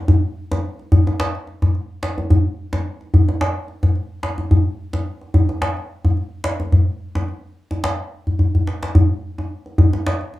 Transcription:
0.08 djembe bass
0.52 djembe slap, djembe tone
0.79 djembe slap
0.92 djembe bass
1.07 djembe tone
1.20 djembe slap
1.35 djembe slap
1.47 djembe slap
1.62 djembe slap, djembe tone, djembe bass
1.75 djembe slap
2.03 djembe slap
2.18 djembe slap, djembe tone
2.30 djembe bass
2.73 djembe slap, djembe tone
3.01 djembe slap
3.14 djembe bass
3.29 djembe tone
3.41 djembe slap
3.68 djembe slap
3.83 djembe slap, djembe tone, djembe bass
3.95 djembe slap
4.23 djembe slap
4.38 djembe slap, djembe tone
4.51 djembe bass
4.93 djembe slap, djembe tone
5.21 djembe slap
5.34 djembe bass
5.49 djembe tone
5.62 djembe slap
5.77 djembe slap
6.05 djembe slap, djembe tone, djembe bass
6.17 djembe slap
6.44 djembe slap
6.60 djembe slap, djembe tone
6.72 djembe slap, djembe bass
7.15 djembe slap, djembe tone
7.28 djembe slap
7.71 djembe tone
7.84 djembe slap
8.27 djembe bass
8.39 djembe bass
8.55 djembe bass
8.67 djembe slap
8.83 djembe slap
8.95 djembe bass
9.38 djembe tone
9.66 djembe slap
9.78 djembe bass
9.93 djembe tone
10.07 djembe slap
10.21 djembe slap
10.34 djembe slap

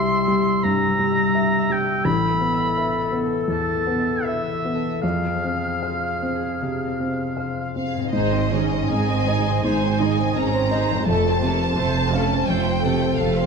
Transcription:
Already playing: C2 C3 G3 G4 E5 C6 E6
0.17 E5
0.28 G3
0.40 G4
0.63 G2 C4 A#5
0.88 G3
0.99 G3
1.12 E5
1.35 G4 E5
1.60 E5
1.70 G3 G5
1.84 G4
2.05 A1 A2 A4 B5
2.30 B3
2.41 B3
2.54 E5
2.77 B4 E5
3.01 E5
3.12 B3
3.25 A4
3.48 E2 E3 A5
3.75 B3
3.87 B3
4.00 E5
4.24 B4 E5
4.49 E5
4.65 B3
4.75 A4
5.02 F2 G#4 F5 F6
5.30 C4
5.44 C4
5.56 F5
5.82 C5 F5
6.09 F5
6.22 C4
6.35 G#4
6.61 C3
6.86 C4
7.00 C4
7.11 F5
7.37 C5 F5
7.61 F5
7.76 C4 F5
7.87 G#4
7.95 G#2
7.99 C4
8.04 D#4
8.08 C5
8.12 G#1 G#2 D#4 G#4 C5 D#5
8.33 C4 C5
8.51 D#3 C#4 D#4 G#4
8.71 C4 C5
8.89 G#1 G#2 C4 D#4 G#4 D#5 G#5
9.11 C4 C5
9.27 D#4 G#4 D#5
9.46 C4 C5
9.64 G#1 G#2 D#4 G#4 C5 G#5
9.83 C4 C5
10.00 D#3 D#4 G#4 D#5
10.19 C4 C5
10.36 G#1 G#2 C4 C#4 D#4 G#4 A#5
10.54 C4 C5
10.71 D#4 G#4 C5 D#5
10.90 F2 C4 C5
10.94 A3
10.99 F4
11.03 F1 F2 A4 C5 A5
11.09 F2 A3 A4
11.29 C4 C5
11.42 C3 A3 A#3 A4
11.63 C4 C5
11.77 F1 F2 A3 C4 A4 C5
11.98 C4 C5
12.12 C#4 F5
12.17 A3 A4
12.34 C4 C5
12.48 F1 F2 A3 A4 C5 G5
12.68 C4 C5
12.82 C3 A3 A4
12.86 A4
13.03 C4 C5
13.18 F1 F2 A3 C4 A4 F5
13.38 C4 C5

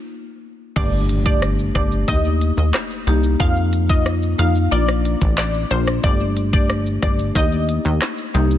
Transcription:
0.76 G1 A3 D4 G4 D5, kick, crash, impact, shaker
0.93 shaker
1.09 closed hi-hat, shaker
1.26 A3 D4 G4 D5, kick, shaker
1.42 cross-stick, shaker
1.59 shaker
1.75 G1 A3 D4 G4 D5, kick, cross-stick, closed hi-hat, shaker
1.92 shaker
2.08 D#2 A#3 D#4 G4 D#5, kick, shaker
2.25 shaker
2.41 closed hi-hat, shaker
2.58 D#2, shaker
2.74 cross-stick, clap, shaker
2.91 shaker
3.07 C2 A#3 D#4 G4, closed hi-hat, shaker
3.23 shaker
3.40 F2 A#3 D#4 F4 F5, kick, shaker
3.56 shaker
3.73 closed hi-hat, shaker
3.89 A#3 D#4 F4 D#5, kick, shaker
4.06 cross-stick, shaker
4.23 shaker
4.39 F2 A#3 D#4 F4 F5, closed hi-hat, shaker
4.56 shaker
4.72 A#1 A#3 D4 F4 D5, shaker
4.89 cross-stick, shaker
5.05 closed hi-hat, shaker
5.21 A1, kick, shaker
5.38 D5, cross-stick, clap, shaker
5.54 shaker
5.71 A#1 A#3 D4 F4 C5, closed hi-hat, shaker
5.87 cross-stick, shaker
6.04 G1 A3 D4 G4 D5, kick, shaker
6.20 shaker
6.37 closed hi-hat, shaker
6.53 A3 D4 G4 D5, kick, shaker
6.70 cross-stick, shaker
6.86 shaker
7.02 G1 A3 D4 G4 D5, kick, cross-stick, closed hi-hat, shaker
7.19 shaker
7.35 D#2 A#3 D#4 G4 D#5, kick, shaker
7.52 shaker
7.69 closed hi-hat, shaker
7.85 D#2, shaker
8.02 cross-stick, clap, shaker
8.18 shaker
8.34 C2 A#3 D#4 G4, closed hi-hat, shaker
8.51 shaker

